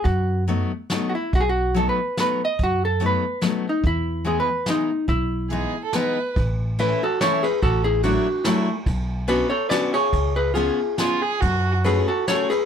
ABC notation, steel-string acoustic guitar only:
X:1
M:3/4
L:1/8
Q:"Swing" 1/4=142
K:E
V:1 name="Steel-string acoustic guitar"
z2 [F,A,B,D] z [F,A,B,D] z | z2 [F,A,B,D] z [F,A,B,D] z | z2 [F,A,B,D] z [F,A,B,D] z | z2 [E,G,B,D] z [E,G,B,D] z |
z2 [E,G,B,D] z [E,G,B,D] z | [K:A] z2 [E,A,CE] z [E,A,CE] z | z2 [F,A,DE] z [F,A,DE] z | z2 [B,CDF] z [B,CDF] z |
z2 [B,C^EG] z [B,CEG] z | z2 [A,CFG] z [A,CFG] z |]